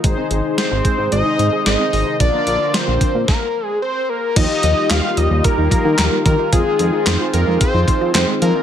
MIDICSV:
0, 0, Header, 1, 7, 480
1, 0, Start_track
1, 0, Tempo, 540541
1, 35, Time_signature, 4, 2, 24, 8
1, 7662, End_track
2, 0, Start_track
2, 0, Title_t, "Analog synth lead"
2, 0, Program_c, 0, 81
2, 516, Note_on_c, 0, 72, 103
2, 962, Note_off_c, 0, 72, 0
2, 997, Note_on_c, 0, 75, 113
2, 1442, Note_off_c, 0, 75, 0
2, 1476, Note_on_c, 0, 75, 111
2, 1922, Note_off_c, 0, 75, 0
2, 1957, Note_on_c, 0, 74, 114
2, 2436, Note_on_c, 0, 72, 100
2, 2449, Note_off_c, 0, 74, 0
2, 2910, Note_off_c, 0, 72, 0
2, 2916, Note_on_c, 0, 70, 82
2, 3244, Note_off_c, 0, 70, 0
2, 3244, Note_on_c, 0, 68, 82
2, 3362, Note_off_c, 0, 68, 0
2, 3394, Note_on_c, 0, 72, 99
2, 3634, Note_on_c, 0, 70, 102
2, 3647, Note_off_c, 0, 72, 0
2, 3873, Note_on_c, 0, 75, 124
2, 3887, Note_off_c, 0, 70, 0
2, 4354, Note_on_c, 0, 77, 115
2, 4367, Note_off_c, 0, 75, 0
2, 4594, Note_on_c, 0, 75, 102
2, 4608, Note_off_c, 0, 77, 0
2, 4830, Note_off_c, 0, 75, 0
2, 4835, Note_on_c, 0, 70, 108
2, 5520, Note_off_c, 0, 70, 0
2, 5554, Note_on_c, 0, 70, 97
2, 5778, Note_off_c, 0, 70, 0
2, 5795, Note_on_c, 0, 68, 110
2, 6275, Note_on_c, 0, 72, 106
2, 6289, Note_off_c, 0, 68, 0
2, 6509, Note_off_c, 0, 72, 0
2, 6514, Note_on_c, 0, 70, 96
2, 6738, Note_off_c, 0, 70, 0
2, 6754, Note_on_c, 0, 72, 105
2, 7201, Note_off_c, 0, 72, 0
2, 7235, Note_on_c, 0, 72, 99
2, 7343, Note_off_c, 0, 72, 0
2, 7475, Note_on_c, 0, 70, 96
2, 7662, Note_off_c, 0, 70, 0
2, 7662, End_track
3, 0, Start_track
3, 0, Title_t, "Analog polysynth"
3, 0, Program_c, 1, 90
3, 34, Note_on_c, 1, 63, 83
3, 34, Note_on_c, 1, 68, 75
3, 34, Note_on_c, 1, 72, 93
3, 1919, Note_off_c, 1, 63, 0
3, 1919, Note_off_c, 1, 68, 0
3, 1919, Note_off_c, 1, 72, 0
3, 1955, Note_on_c, 1, 70, 78
3, 1956, Note_on_c, 1, 62, 69
3, 1956, Note_on_c, 1, 65, 64
3, 2896, Note_off_c, 1, 62, 0
3, 2896, Note_off_c, 1, 65, 0
3, 2896, Note_off_c, 1, 70, 0
3, 3874, Note_on_c, 1, 63, 73
3, 3874, Note_on_c, 1, 65, 66
3, 3874, Note_on_c, 1, 67, 80
3, 5759, Note_off_c, 1, 63, 0
3, 5759, Note_off_c, 1, 65, 0
3, 5759, Note_off_c, 1, 67, 0
3, 5794, Note_on_c, 1, 63, 70
3, 5794, Note_on_c, 1, 65, 64
3, 5794, Note_on_c, 1, 68, 79
3, 7662, Note_off_c, 1, 63, 0
3, 7662, Note_off_c, 1, 65, 0
3, 7662, Note_off_c, 1, 68, 0
3, 7662, End_track
4, 0, Start_track
4, 0, Title_t, "Analog synth pad"
4, 0, Program_c, 2, 89
4, 0, Note_on_c, 2, 51, 83
4, 0, Note_on_c, 2, 63, 89
4, 34, Note_on_c, 2, 48, 80
4, 34, Note_on_c, 2, 56, 74
4, 1919, Note_off_c, 2, 51, 0
4, 1919, Note_off_c, 2, 63, 0
4, 1935, Note_off_c, 2, 48, 0
4, 1935, Note_off_c, 2, 56, 0
4, 1955, Note_on_c, 2, 50, 81
4, 1955, Note_on_c, 2, 53, 72
4, 1956, Note_on_c, 2, 58, 73
4, 1956, Note_on_c, 2, 65, 85
4, 2905, Note_off_c, 2, 53, 0
4, 2906, Note_off_c, 2, 50, 0
4, 2906, Note_off_c, 2, 58, 0
4, 2906, Note_off_c, 2, 65, 0
4, 3874, Note_on_c, 2, 51, 85
4, 3874, Note_on_c, 2, 55, 75
4, 3874, Note_on_c, 2, 58, 76
4, 3875, Note_on_c, 2, 65, 90
4, 5775, Note_off_c, 2, 55, 0
4, 5775, Note_off_c, 2, 58, 0
4, 5793, Note_on_c, 2, 56, 73
4, 5793, Note_on_c, 2, 60, 78
4, 7662, Note_off_c, 2, 51, 0
4, 7662, Note_off_c, 2, 56, 0
4, 7662, Note_off_c, 2, 60, 0
4, 7662, Note_off_c, 2, 65, 0
4, 7662, End_track
5, 0, Start_track
5, 0, Title_t, "Synth arpeggio sound"
5, 0, Program_c, 3, 84
5, 35, Note_on_c, 3, 56, 92
5, 124, Note_off_c, 3, 56, 0
5, 155, Note_on_c, 3, 60, 73
5, 244, Note_off_c, 3, 60, 0
5, 515, Note_on_c, 3, 56, 84
5, 604, Note_off_c, 3, 56, 0
5, 635, Note_on_c, 3, 68, 79
5, 724, Note_off_c, 3, 68, 0
5, 755, Note_on_c, 3, 56, 79
5, 844, Note_off_c, 3, 56, 0
5, 875, Note_on_c, 3, 60, 77
5, 963, Note_off_c, 3, 60, 0
5, 995, Note_on_c, 3, 56, 89
5, 1084, Note_off_c, 3, 56, 0
5, 1115, Note_on_c, 3, 63, 75
5, 1204, Note_off_c, 3, 63, 0
5, 1235, Note_on_c, 3, 56, 75
5, 1324, Note_off_c, 3, 56, 0
5, 1355, Note_on_c, 3, 68, 81
5, 1443, Note_off_c, 3, 68, 0
5, 1475, Note_on_c, 3, 56, 84
5, 1564, Note_off_c, 3, 56, 0
5, 1594, Note_on_c, 3, 60, 75
5, 1683, Note_off_c, 3, 60, 0
5, 1714, Note_on_c, 3, 56, 77
5, 1803, Note_off_c, 3, 56, 0
5, 1834, Note_on_c, 3, 63, 78
5, 1923, Note_off_c, 3, 63, 0
5, 1955, Note_on_c, 3, 53, 92
5, 2043, Note_off_c, 3, 53, 0
5, 2074, Note_on_c, 3, 58, 74
5, 2163, Note_off_c, 3, 58, 0
5, 2434, Note_on_c, 3, 53, 84
5, 2523, Note_off_c, 3, 53, 0
5, 2554, Note_on_c, 3, 65, 78
5, 2643, Note_off_c, 3, 65, 0
5, 2675, Note_on_c, 3, 53, 78
5, 2764, Note_off_c, 3, 53, 0
5, 2794, Note_on_c, 3, 58, 76
5, 2883, Note_off_c, 3, 58, 0
5, 3875, Note_on_c, 3, 53, 94
5, 3963, Note_off_c, 3, 53, 0
5, 4115, Note_on_c, 3, 53, 81
5, 4204, Note_off_c, 3, 53, 0
5, 4235, Note_on_c, 3, 63, 75
5, 4323, Note_off_c, 3, 63, 0
5, 4474, Note_on_c, 3, 65, 80
5, 4563, Note_off_c, 3, 65, 0
5, 4595, Note_on_c, 3, 53, 81
5, 4684, Note_off_c, 3, 53, 0
5, 4715, Note_on_c, 3, 55, 78
5, 4804, Note_off_c, 3, 55, 0
5, 4955, Note_on_c, 3, 63, 81
5, 5043, Note_off_c, 3, 63, 0
5, 5074, Note_on_c, 3, 53, 80
5, 5163, Note_off_c, 3, 53, 0
5, 5194, Note_on_c, 3, 65, 78
5, 5283, Note_off_c, 3, 65, 0
5, 5314, Note_on_c, 3, 53, 84
5, 5403, Note_off_c, 3, 53, 0
5, 5433, Note_on_c, 3, 55, 76
5, 5523, Note_off_c, 3, 55, 0
5, 5555, Note_on_c, 3, 53, 80
5, 5643, Note_off_c, 3, 53, 0
5, 5674, Note_on_c, 3, 63, 80
5, 5763, Note_off_c, 3, 63, 0
5, 5794, Note_on_c, 3, 53, 92
5, 5883, Note_off_c, 3, 53, 0
5, 6034, Note_on_c, 3, 53, 82
5, 6123, Note_off_c, 3, 53, 0
5, 6154, Note_on_c, 3, 63, 74
5, 6243, Note_off_c, 3, 63, 0
5, 6394, Note_on_c, 3, 65, 78
5, 6483, Note_off_c, 3, 65, 0
5, 6515, Note_on_c, 3, 53, 78
5, 6603, Note_off_c, 3, 53, 0
5, 6634, Note_on_c, 3, 56, 74
5, 6723, Note_off_c, 3, 56, 0
5, 6874, Note_on_c, 3, 63, 77
5, 6963, Note_off_c, 3, 63, 0
5, 6994, Note_on_c, 3, 53, 81
5, 7083, Note_off_c, 3, 53, 0
5, 7114, Note_on_c, 3, 65, 84
5, 7203, Note_off_c, 3, 65, 0
5, 7235, Note_on_c, 3, 53, 82
5, 7323, Note_off_c, 3, 53, 0
5, 7354, Note_on_c, 3, 56, 78
5, 7443, Note_off_c, 3, 56, 0
5, 7475, Note_on_c, 3, 53, 80
5, 7563, Note_off_c, 3, 53, 0
5, 7595, Note_on_c, 3, 63, 81
5, 7662, Note_off_c, 3, 63, 0
5, 7662, End_track
6, 0, Start_track
6, 0, Title_t, "Analog synth bass"
6, 0, Program_c, 4, 38
6, 35, Note_on_c, 4, 32, 113
6, 130, Note_off_c, 4, 32, 0
6, 274, Note_on_c, 4, 32, 101
6, 369, Note_off_c, 4, 32, 0
6, 634, Note_on_c, 4, 32, 93
6, 729, Note_off_c, 4, 32, 0
6, 875, Note_on_c, 4, 44, 96
6, 970, Note_off_c, 4, 44, 0
6, 994, Note_on_c, 4, 32, 105
6, 1090, Note_off_c, 4, 32, 0
6, 1234, Note_on_c, 4, 44, 102
6, 1330, Note_off_c, 4, 44, 0
6, 1474, Note_on_c, 4, 32, 100
6, 1570, Note_off_c, 4, 32, 0
6, 1714, Note_on_c, 4, 32, 105
6, 1810, Note_off_c, 4, 32, 0
6, 1955, Note_on_c, 4, 34, 102
6, 2050, Note_off_c, 4, 34, 0
6, 2195, Note_on_c, 4, 34, 105
6, 2290, Note_off_c, 4, 34, 0
6, 2555, Note_on_c, 4, 34, 94
6, 2650, Note_off_c, 4, 34, 0
6, 2795, Note_on_c, 4, 46, 95
6, 2890, Note_off_c, 4, 46, 0
6, 3875, Note_on_c, 4, 39, 103
6, 3970, Note_off_c, 4, 39, 0
6, 4115, Note_on_c, 4, 39, 102
6, 4210, Note_off_c, 4, 39, 0
6, 4354, Note_on_c, 4, 39, 103
6, 4449, Note_off_c, 4, 39, 0
6, 4594, Note_on_c, 4, 39, 104
6, 4689, Note_off_c, 4, 39, 0
6, 4714, Note_on_c, 4, 39, 94
6, 4809, Note_off_c, 4, 39, 0
6, 4954, Note_on_c, 4, 39, 101
6, 5049, Note_off_c, 4, 39, 0
6, 5194, Note_on_c, 4, 51, 98
6, 5289, Note_off_c, 4, 51, 0
6, 5314, Note_on_c, 4, 39, 105
6, 5410, Note_off_c, 4, 39, 0
6, 5556, Note_on_c, 4, 51, 101
6, 5650, Note_off_c, 4, 51, 0
6, 5795, Note_on_c, 4, 41, 103
6, 5890, Note_off_c, 4, 41, 0
6, 6035, Note_on_c, 4, 41, 107
6, 6130, Note_off_c, 4, 41, 0
6, 6275, Note_on_c, 4, 41, 97
6, 6370, Note_off_c, 4, 41, 0
6, 6516, Note_on_c, 4, 41, 100
6, 6610, Note_off_c, 4, 41, 0
6, 6636, Note_on_c, 4, 41, 91
6, 6731, Note_off_c, 4, 41, 0
6, 6875, Note_on_c, 4, 41, 106
6, 6970, Note_off_c, 4, 41, 0
6, 7116, Note_on_c, 4, 53, 98
6, 7210, Note_off_c, 4, 53, 0
6, 7235, Note_on_c, 4, 41, 96
6, 7330, Note_off_c, 4, 41, 0
6, 7476, Note_on_c, 4, 53, 102
6, 7571, Note_off_c, 4, 53, 0
6, 7662, End_track
7, 0, Start_track
7, 0, Title_t, "Drums"
7, 35, Note_on_c, 9, 36, 111
7, 35, Note_on_c, 9, 42, 81
7, 123, Note_off_c, 9, 42, 0
7, 124, Note_off_c, 9, 36, 0
7, 273, Note_on_c, 9, 42, 71
7, 361, Note_off_c, 9, 42, 0
7, 515, Note_on_c, 9, 38, 109
7, 518, Note_on_c, 9, 42, 70
7, 604, Note_off_c, 9, 38, 0
7, 606, Note_off_c, 9, 42, 0
7, 752, Note_on_c, 9, 36, 97
7, 753, Note_on_c, 9, 42, 73
7, 841, Note_off_c, 9, 36, 0
7, 842, Note_off_c, 9, 42, 0
7, 994, Note_on_c, 9, 42, 76
7, 1083, Note_off_c, 9, 42, 0
7, 1237, Note_on_c, 9, 42, 65
7, 1326, Note_off_c, 9, 42, 0
7, 1475, Note_on_c, 9, 38, 110
7, 1475, Note_on_c, 9, 42, 76
7, 1564, Note_off_c, 9, 38, 0
7, 1564, Note_off_c, 9, 42, 0
7, 1715, Note_on_c, 9, 46, 72
7, 1804, Note_off_c, 9, 46, 0
7, 1955, Note_on_c, 9, 36, 108
7, 1955, Note_on_c, 9, 42, 80
7, 2043, Note_off_c, 9, 42, 0
7, 2044, Note_off_c, 9, 36, 0
7, 2192, Note_on_c, 9, 42, 72
7, 2281, Note_off_c, 9, 42, 0
7, 2434, Note_on_c, 9, 38, 107
7, 2437, Note_on_c, 9, 42, 72
7, 2523, Note_off_c, 9, 38, 0
7, 2525, Note_off_c, 9, 42, 0
7, 2672, Note_on_c, 9, 36, 95
7, 2673, Note_on_c, 9, 42, 74
7, 2761, Note_off_c, 9, 36, 0
7, 2762, Note_off_c, 9, 42, 0
7, 2914, Note_on_c, 9, 38, 89
7, 2915, Note_on_c, 9, 36, 109
7, 3003, Note_off_c, 9, 36, 0
7, 3003, Note_off_c, 9, 38, 0
7, 3874, Note_on_c, 9, 42, 85
7, 3874, Note_on_c, 9, 49, 94
7, 3875, Note_on_c, 9, 36, 116
7, 3963, Note_off_c, 9, 42, 0
7, 3963, Note_off_c, 9, 49, 0
7, 3964, Note_off_c, 9, 36, 0
7, 4112, Note_on_c, 9, 42, 71
7, 4201, Note_off_c, 9, 42, 0
7, 4355, Note_on_c, 9, 38, 112
7, 4355, Note_on_c, 9, 39, 95
7, 4357, Note_on_c, 9, 42, 70
7, 4443, Note_off_c, 9, 38, 0
7, 4443, Note_off_c, 9, 39, 0
7, 4446, Note_off_c, 9, 42, 0
7, 4593, Note_on_c, 9, 42, 75
7, 4682, Note_off_c, 9, 42, 0
7, 4834, Note_on_c, 9, 42, 79
7, 4836, Note_on_c, 9, 36, 92
7, 4923, Note_off_c, 9, 42, 0
7, 4925, Note_off_c, 9, 36, 0
7, 5073, Note_on_c, 9, 36, 87
7, 5077, Note_on_c, 9, 42, 66
7, 5162, Note_off_c, 9, 36, 0
7, 5166, Note_off_c, 9, 42, 0
7, 5315, Note_on_c, 9, 38, 113
7, 5315, Note_on_c, 9, 39, 92
7, 5315, Note_on_c, 9, 42, 80
7, 5404, Note_off_c, 9, 38, 0
7, 5404, Note_off_c, 9, 39, 0
7, 5404, Note_off_c, 9, 42, 0
7, 5556, Note_on_c, 9, 36, 101
7, 5556, Note_on_c, 9, 42, 71
7, 5644, Note_off_c, 9, 36, 0
7, 5644, Note_off_c, 9, 42, 0
7, 5795, Note_on_c, 9, 36, 115
7, 5795, Note_on_c, 9, 42, 84
7, 5884, Note_off_c, 9, 36, 0
7, 5884, Note_off_c, 9, 42, 0
7, 6032, Note_on_c, 9, 42, 70
7, 6121, Note_off_c, 9, 42, 0
7, 6275, Note_on_c, 9, 38, 112
7, 6275, Note_on_c, 9, 39, 92
7, 6278, Note_on_c, 9, 42, 72
7, 6364, Note_off_c, 9, 38, 0
7, 6364, Note_off_c, 9, 39, 0
7, 6366, Note_off_c, 9, 42, 0
7, 6514, Note_on_c, 9, 42, 74
7, 6603, Note_off_c, 9, 42, 0
7, 6755, Note_on_c, 9, 42, 79
7, 6757, Note_on_c, 9, 36, 95
7, 6844, Note_off_c, 9, 42, 0
7, 6845, Note_off_c, 9, 36, 0
7, 6994, Note_on_c, 9, 36, 90
7, 6998, Note_on_c, 9, 42, 65
7, 7083, Note_off_c, 9, 36, 0
7, 7087, Note_off_c, 9, 42, 0
7, 7236, Note_on_c, 9, 38, 110
7, 7236, Note_on_c, 9, 39, 95
7, 7236, Note_on_c, 9, 42, 78
7, 7325, Note_off_c, 9, 38, 0
7, 7325, Note_off_c, 9, 39, 0
7, 7325, Note_off_c, 9, 42, 0
7, 7476, Note_on_c, 9, 42, 74
7, 7565, Note_off_c, 9, 42, 0
7, 7662, End_track
0, 0, End_of_file